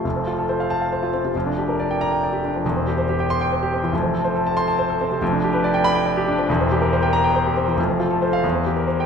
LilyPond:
\new Staff \with { instrumentName = "Grand piano" } { \time 6/8 \key f \major \tempo 4. = 93 << { r4. a''8 r4 | r4. bes''8 r4 | r4. c'''8 r4 | r4. c'''8 r4 |
r4. b''8 r4 | r4. bes''8 r4 | r4 r16 f''16 r4 r16 g''16 | } \\ { <f,, f,>16 c'16 f'16 a'16 c''16 f''8 f''16 c''16 f'16 c'16 c16 | <f,, f,>16 d'16 g'16 bes'16 d''16 g''8 g''16 d''16 g'16 d'16 f16 | <e,, e,>16 c'16 g'16 c''16 g'16 g''8 g''16 c''16 g'16 c'16 e16 | <f,, f,>16 c'16 a'16 c''16 a'16 a''8 a''16 c''16 a'16 c'16 c16 |
<f,, f,>16 d'16 g'16 b'16 d''16 g''8 g''16 d''16 g'16 d'16 f16 | <e,, e,>16 c'16 g'16 bes'16 c''16 g''8 g''16 c''16 g'16 c'16 e16 | <f,, f,>16 c'16 f'16 a'16 c''8 e,16 c'16 g'16 bes'16 c''8 | } >> }